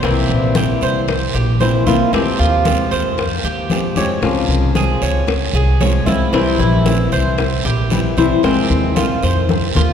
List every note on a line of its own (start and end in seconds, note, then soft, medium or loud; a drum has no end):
0.03 0.28 C2 medium
0.03 0.54 C3 medium
0.03 0.55 E3 medium
0.03 0.55 A#3 medium
0.03 0.54 C4 medium
0.03 0.55 C4 medium
0.03 0.55 E4 medium
0.03 high bongo medium
0.03 high conga soft
0.03 long guiro medium
0.29 0.79 A#1 medium
0.29 high bongo soft
0.29 high conga soft
0.55 1.07 E3 soft
0.55 1.07 A#3 soft
0.55 1.07 C4 soft
0.55 1.08 E4 soft
0.55 0.81 G4 medium
0.55 high bongo medium
0.55 high conga loud
0.55 short guiro medium
0.81 1.32 C2 medium
0.81 1.33 C5 medium
0.81 high conga soft
0.81 short guiro medium
1.08 muted nylon-string guitar stroke medium
1.08 high bongo medium
1.08 high conga soft
1.08 long guiro medium
1.33 1.84 A#1 medium
1.33 1.60 G4 medium
1.33 high bongo soft
1.33 high conga soft
1.60 1.86 E3 medium
1.60 1.86 A#3 medium
1.60 1.86 C4 medium
1.60 1.85 E4 medium
1.60 1.86 C5 medium
1.60 high bongo soft
1.60 low bongo medium
1.60 high conga medium
1.60 short guiro medium
1.86 1.99 C2 medium
1.86 2.13 E3 medium
1.86 2.12 A#3 medium
1.86 2.12 C4 medium
1.86 2.12 E4 medium
1.86 2.12 F4 medium
1.86 high bongo soft
1.86 high conga medium
1.86 short guiro medium
2.13 2.38 F2 medium
2.13 2.65 C3 medium
2.13 2.64 F3 medium
2.13 2.65 G#3 medium
2.13 2.39 C4 medium
2.13 2.65 C4 medium
2.13 2.66 G4 medium
2.13 high bongo medium
2.13 high conga soft
2.13 long guiro medium
2.39 2.89 D#2 medium
2.39 2.90 F4 medium
2.39 high bongo soft
2.39 high conga soft
2.65 3.17 F3 soft
2.65 3.17 G#3 soft
2.65 3.17 C4 medium
2.65 3.17 G4 medium
2.65 high bongo medium
2.65 high conga medium
2.65 short guiro medium
2.91 3.42 F2 medium
2.91 3.43 C5 medium
2.91 high conga soft
2.91 short guiro medium
3.18 muted nylon-string guitar stroke medium
3.18 high bongo medium
3.18 high conga soft
3.18 long guiro medium
3.44 3.94 D#2 medium
3.44 3.96 G4 medium
3.44 high bongo soft
3.44 high conga soft
3.70 3.96 F3 soft
3.70 3.96 G#3 medium
3.70 3.96 C4 medium
3.70 3.96 G4 medium
3.70 high bongo soft
3.70 low bongo medium
3.70 high conga medium
3.70 short guiro medium
3.96 4.09 F2 medium
3.96 4.21 F3 medium
3.96 4.21 G#3 medium
3.96 4.22 C4 medium
3.96 4.22 G4 medium
3.96 4.23 C#5 medium
3.96 high bongo soft
3.96 high conga medium
3.96 short guiro medium
4.22 4.47 C#2 medium
4.22 4.74 C#3 medium
4.22 4.73 F3 medium
4.22 4.74 G#3 medium
4.22 4.74 C4 medium
4.22 4.75 F4 medium
4.22 high bongo medium
4.22 high conga soft
4.22 long guiro medium
4.48 4.99 C2 medium
4.48 high bongo soft
4.48 high conga soft
4.74 5.26 F3 soft
4.74 5.26 G#3 soft
4.74 5.26 C4 medium
4.74 5.26 F4 soft
4.74 5.01 G#4 medium
4.74 high bongo medium
4.74 high conga medium
4.74 short guiro medium
5.01 5.52 C#2 medium
5.01 5.53 C#5 medium
5.01 high conga soft
5.01 short guiro medium
5.27 muted nylon-string guitar stroke medium
5.27 high bongo medium
5.27 high conga soft
5.27 long guiro medium
5.53 6.04 C2 medium
5.53 5.80 G#4 medium
5.53 high bongo soft
5.53 high conga soft
5.80 6.06 F3 medium
5.80 6.06 G#3 medium
5.80 6.06 C4 medium
5.80 6.05 F4 medium
5.80 6.06 C#5 medium
5.80 high bongo soft
5.80 low bongo medium
5.80 high conga medium
5.80 short guiro medium
6.06 6.19 C#2 medium
6.06 6.33 F3 medium
6.06 6.33 G#3 medium
6.06 6.32 C4 medium
6.06 6.32 E4 medium
6.06 6.32 F4 medium
6.06 high bongo soft
6.06 high conga medium
6.06 short guiro medium
6.33 6.58 C2 medium
6.33 6.85 C3 medium
6.33 6.85 E3 medium
6.33 6.85 G3 medium
6.33 6.59 C4 medium
6.33 6.86 C4 medium
6.33 6.86 E4 medium
6.33 high bongo medium
6.33 high conga soft
6.33 long guiro medium
6.59 7.09 A#1 loud
6.59 7.11 E4 medium
6.59 high bongo soft
6.59 high conga soft
6.86 7.38 E3 soft
6.86 7.38 G3 soft
6.86 7.38 C4 medium
6.86 7.38 E4 medium
6.86 high bongo medium
6.86 high conga medium
6.86 short guiro medium
7.12 7.62 C2 medium
7.12 7.64 C5 medium
7.12 high conga soft
7.12 short guiro medium
7.38 muted nylon-string guitar stroke medium
7.38 high bongo medium
7.38 high conga soft
7.38 long guiro medium
7.65 8.15 A#1 medium
7.65 8.16 G4 medium
7.65 high bongo soft
7.65 high conga soft
7.90 8.17 E3 soft
7.90 8.17 G3 medium
7.90 8.17 C4 medium
7.90 8.17 E4 medium
7.90 high bongo soft
7.90 low bongo medium
7.90 high conga medium
7.90 short guiro medium
8.17 8.30 C2 medium
8.17 8.43 E3 medium
8.17 8.44 G3 medium
8.17 8.43 C4 medium
8.17 8.43 E4 medium
8.17 8.43 C5 medium
8.17 high bongo soft
8.17 high conga medium
8.17 short guiro medium
8.43 8.69 F2 medium
8.43 8.96 C3 medium
8.43 8.96 D#3 medium
8.43 8.96 G#3 medium
8.43 8.95 C4 medium
8.43 8.96 C4 medium
8.43 8.96 F4 medium
8.43 high bongo medium
8.43 high conga soft
8.43 long guiro medium
8.70 9.20 D#2 medium
8.70 high bongo soft
8.70 high conga soft
8.96 9.49 D#3 soft
8.96 9.49 G#3 soft
8.96 9.49 C4 soft
8.96 9.22 F4 medium
8.96 9.49 F4 medium
8.96 high bongo medium
8.96 high conga medium
8.96 short guiro medium
9.23 9.73 F2 medium
9.23 9.74 C5 medium
9.23 high conga soft
9.23 short guiro medium
9.49 muted nylon-string guitar stroke medium
9.49 high bongo medium
9.49 high conga medium
9.49 long guiro medium
9.75 9.93 D#2 medium
9.75 9.93 F4 medium
9.75 high bongo medium
9.75 low conga medium